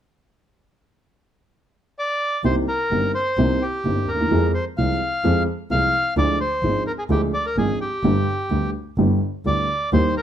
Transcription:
1.99 D5
2.44 C2 C3 D#3 A#3 C4 G4 C5
2.68 A#4
2.91 G1 G2 D#3 A#3 C4 G4
3.15 C5
3.37 C2 C3 D#3 A#3 C4 G4
3.62 G4
3.85 G1 G2 D#3 A#3 C4 G4
4.07 D#2 A#4
4.14 D2
4.21 D#2
4.26 E2
4.31 F2 F3 G#3 C4 G#4
4.54 C5
4.77 C2 C3 F3 G#3 C4 G#4 F5
5.24 F2 F3 G#3 C4 G#4
5.70 C2 C3 F3 G#3 C4 G#4 F5
6.17 D2 D3 F3 G#3 D4 G#4 D5
6.41 C5
6.63 G#1 G#2 F3 G#3 D4 G#4
6.87 A#4
6.98 G#4
7.09 D2 D3 F3 G#3 D4 G4 G#4
7.34 D5
7.46 A#4
7.57 G#1 G#2 F3 G#3 D4 G#4
7.81 G4
8.03 G1 G2 D3 G3 B3 G4
8.50 D2 D3 G3 B3 G4
8.98 G1 G2 D3 G3 B3 G4
9.45 D2 D3 G3 B3 G4 D5
9.93 D#2 D#3 G3 A#3 G4 C5
10.17 A#4

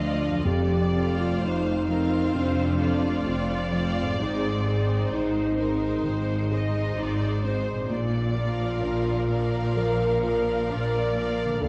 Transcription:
Already playing: D2 D3 F3 A3 D4 F4 A4 D5 F5 A5
0.00 D#5
0.28 F2
0.32 F3
0.37 F4
0.41 F2 C5
0.46 F1 F2 G4 D5
0.93 A3 F4 A4 C5 F5
1.19 F4
1.41 F1 F2 D#4 F4 C5
1.87 F3 C4 F4 A#4 C5 F5
2.34 F1 F2 C3 D4 C5
2.80 A3 F4 A4 C5 D5 F5
3.26 F1 F2 C4 F4
3.72 F3 A3 F4 C5 F5
4.02 G#2
4.06 C4
4.11 D#4 G#4
4.18 G#1 G#2 G#3 C4 D#4 C5
4.65 G#3 D#4 G#4 C5
5.11 G#1 G#2 D#4 C5
5.57 G#3 C4 D#4 A#4 C5
6.03 G#1 G#2 D#3 C5
6.51 G#3 D#4 G#4 C5 D#5
6.97 G#1 G#2 D#4 D5
7.43 G#3 C4 D#4 C5
7.71 A#2
7.76 A#3
7.81 D4
7.85 F4
7.89 A#1 A#2 F4 D5
8.35 F3 F4 A#4 D5 F5
8.82 A#1 A#2 D4 A#4
9.29 F3 A#3 A#4 D5 F5
9.76 A#1 A#2 F3 A#4
10.23 F3 F4 A#4 D5 F5
10.70 A#1 A#2 D4 A#4 D5
11.15 F3 A#3 A#4 D5 F5
11.44 D3
11.49 A3
11.53 D4
11.58 D2 F3 F4 A4
11.63 D2 D5 F5

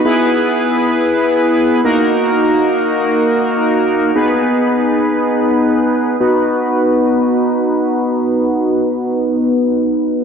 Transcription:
0.05 B3 E4 G#4 B4
1.84 A#3 D#4 F#4 A#4
4.15 B3 D#4 G#4 B4
6.20 B3 D#4 F#4 B4

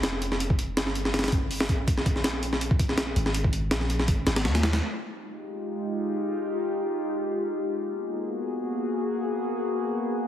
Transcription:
Already playing: F1
0.03 snare, closed hi-hat
0.22 closed hi-hat
0.32 snare
0.40 closed hi-hat
0.50 kick
0.59 closed hi-hat
0.77 G1, snare, closed hi-hat
0.87 snare
0.95 closed hi-hat
1.05 snare
1.14 snare, closed hi-hat
1.19 snare, closed hi-hat
1.24 snare, closed hi-hat
1.28 snare, closed hi-hat
1.32 kick, closed hi-hat
1.51 open hi-hat
1.60 snare
1.69 kick, closed hi-hat
1.88 G#1, kick, closed hi-hat
1.98 snare
2.06 kick, closed hi-hat
2.16 snare
2.24 A#1, snare, closed hi-hat
2.43 closed hi-hat
2.53 snare
2.61 closed hi-hat
2.71 kick
2.79 kick, closed hi-hat
2.89 snare
2.98 snare, closed hi-hat
3.16 G#1, closed hi-hat
3.26 snare
3.34 closed hi-hat
3.44 kick
3.53 closed hi-hat
3.71 A#1, snare, closed hi-hat
3.81 snare
3.90 closed hi-hat
3.99 snare
4.08 G#1, kick, closed hi-hat
4.27 G#1, snare, closed hi-hat
4.36 snare, closed hi-hat
4.45 D#2, snare, closed hi-hat
4.55 snare, closed hi-hat
4.63 snare, closed hi-hat
4.73 snare, closed hi-hat
4.82 G#3 D#4 F4 G4
7.76 A#3 B3 F#4 G#4

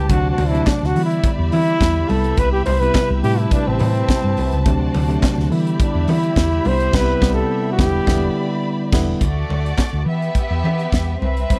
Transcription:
Already playing: C3 G3 A3 E4 G4 A5
0.09 D2 C3 F#3 A3 D4 F#4 C5 D5, kick, closed hi-hat, muted conga
0.30 F#4
0.38 D2, open hi-hat, muted conga
0.48 C3 E4
0.52 F#3 A3 D4, closed hi-hat
0.66 D4, kick, snare, closed hi-hat, high conga
0.82 D2, snare
0.86 F#4
0.95 D3 E3 G3 B3 E4 G4 D5 E5 B5, open hi-hat
1.05 E4
1.11 closed hi-hat
1.24 kick, closed hi-hat, muted conga
1.39 E2
1.52 E3 E4, open hi-hat, muted conga, low conga
1.68 closed hi-hat
1.81 E2, kick, snare, closed hi-hat, high conga
2.08 C2 C3 G3 B3 E4 A4 B4, open hi-hat, high conga
2.24 closed hi-hat
2.37 C2 B4, kick, closed hi-hat, muted conga
2.53 G4
2.66 C2 C5, open hi-hat, muted conga
2.81 C3 G3 B3 E4 B4, closed hi-hat
2.94 kick, snare, closed hi-hat, high conga
3.10 C2
3.23 A2 C3 G3 A3 E4 G4 A5, open hi-hat
3.39 E4, closed hi-hat
3.51 D4, kick, closed hi-hat, muted conga
3.67 A1 C4
3.79 A2, open hi-hat, low conga
3.95 closed hi-hat
4.09 kick, snare, closed hi-hat, high conga
4.24 G2
4.37 C2, open hi-hat, high conga
4.52 C#2, closed hi-hat
4.65 D2 C3 F#3 A3 D4 F#4 C5 D5, kick, closed hi-hat, muted conga
4.94 D2, open hi-hat, muted conga
5.08 C3 F#3 A3 D4, closed hi-hat
5.22 kick, snare, closed hi-hat, high conga
5.38 D2, snare
5.50 D3 E3 G3 B3 E4 G4 D5 E5 B5, open hi-hat
5.67 closed hi-hat
5.80 D4, kick, closed hi-hat, muted conga
5.95 E2
6.08 E3 E4, open hi-hat, low conga
6.23 closed hi-hat
6.36 E2, kick, snare, closed hi-hat, high conga
6.64 C2 C3 G3 B3 C4 D4 C5, open hi-hat, high conga
6.72 E4
6.80 closed hi-hat
6.93 C2 C3 G3 B3 B4, kick, snare, crash
7.01 E4
7.21 C2 C3 G3 B3, kick, snare
7.34 A4
7.72 G4
7.78 E1 D3 G3 B3 E4 D5 B5, kick, snare
8.07 E1 D3 G3 B3 E4, kick, snare
8.92 E1 D3 G3 B3 E4, kick, snare, crash
9.21 D2 A3 F#4 D5, kick, closed hi-hat, muted conga
9.49 D2, muted conga
9.66 closed hi-hat
9.77 kick, snare, closed hi-hat, high conga
9.93 D2
10.06 E3 B3 G4 E5
10.22 closed hi-hat
10.35 kick, closed hi-hat, muted conga
10.50 E2
10.64 E3, muted conga, low conga
10.79 closed hi-hat
10.92 E2, kick, snare, closed hi-hat, high conga
11.21 C2 C4 B4 E5, high conga
11.37 closed hi-hat
11.50 C2, kick, closed hi-hat, muted conga

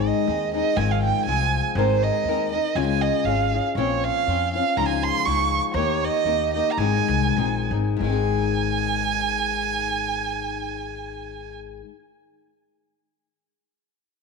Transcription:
Already playing: G#2 D#3 G#3 C4 D#4 G#4
0.05 D#5
0.27 D#2 G#3 C4 D#4 G#4
0.54 G#3 C4 D#4 G#4 D#5
0.76 G#1 G#2 D#3 F3 G#3 C4 G#4 G#5
0.91 F5
1.03 G5
1.26 C2 F3 G#3 C4 G#4 G#5
1.75 G#1 G#3 C4 D#4 A#4 C5
2.03 D#5
2.24 D#2 G#3
2.28 C4 D#4 A#4
2.52 C4 D#4 A#4 D#5
2.75 C#2 C#3 G#3 C#4 F4 G#4 G#5
2.87 G#5
3.01 D#5
3.24 G#1 G#3 C#4 F4 G#4 F5
3.54 C#4 F4 G#4
3.75 A#1 A#2 F3 C4 C#4 F4 C#5
4.04 F5
4.27 F2 F3 C4 C#4 F4
4.54 C4 C#4 F4 F5
4.76 C#2 C#3 F3 G#3 D#4 F4 A#5
4.89 G#5
5.03 C6
5.25 C#2 F3 G#3 D#4 F4 C#6
5.74 D#2 D#3 A#3 D#4 G4 C#5
6.04 D#5
6.24 D#2 D#3 A#3 D#4 G4
6.54 A#3 D#4 G4 D#5
6.72 A#5
6.77 G#1 G#2 D#3 G#3 C4 D#4 G#4 G#5
7.08 C2
7.36 A#1 G#3 C4 D#4 G#4
7.71 G#1 G#3 C4 D#4 G#4
7.97 G#1 G#2
8.01 D#3 G#3 G#5
8.07 C4 D#4
8.13 G#4

